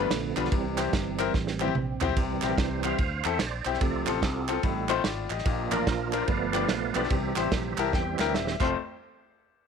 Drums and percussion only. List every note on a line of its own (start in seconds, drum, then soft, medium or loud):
0.11 snare loud
0.11 ride loud
0.37 clap medium
0.37 ride medium
0.45 snare soft
0.52 kick loud
0.52 ride medium
0.78 snare soft
0.78 clap loud
0.78 ride medium
0.93 kick loud
0.93 snare loud
0.93 ride medium
1.19 clap loud
1.19 ride medium
1.34 kick loud
1.34 snare medium
1.47 snare medium
1.60 clap loud
1.68 high tom medium
1.75 mid tom loud
2.01 clap medium
2.01 floor tom loud
2.09 floor tom medium
2.17 kick loud
2.17 ride medium
2.42 snare soft
2.42 clap loud
2.42 ride medium
2.58 kick loud
2.58 snare loud
2.58 ride medium
2.84 clap loud
2.84 ride medium
2.98 kick loud
2.98 ride medium
3.24 clap loud
3.24 ride medium
3.39 snare loud
3.39 ride medium
3.65 clap medium
3.65 ride medium
3.74 snare soft
3.81 kick loud
3.81 ride medium
4.07 clap loud
4.07 ride medium
4.22 kick loud
4.22 snare loud
4.22 ride medium
4.48 clap loud
4.48 ride medium
4.63 kick loud
4.63 ride medium
4.89 clap medium
4.89 ride medium
5.04 snare loud
5.04 ride medium
5.30 clap medium
5.30 ride medium
5.38 snare soft
5.45 kick loud
5.45 ride medium
5.72 clap loud
5.72 ride medium
5.87 kick medium
5.87 snare loud
5.87 ride medium
6.13 clap loud
6.13 ride medium
6.28 kick loud
6.28 ride medium
6.54 clap loud
6.54 ride medium
6.69 snare loud
6.69 ride medium
6.95 clap medium
6.95 ride medium
7.04 snare soft
7.10 kick loud
7.10 ride medium
7.36 snare soft
7.36 clap loud
7.36 ride medium
7.52 kick loud
7.52 snare loud
7.52 ride medium
7.78 clap loud
7.78 ride medium
7.93 kick loud
7.93 snare medium
8.19 snare medium
8.19 clap loud
8.34 snare loud
8.47 snare medium
8.60 kick loud
8.60 clap medium
8.60 crash medium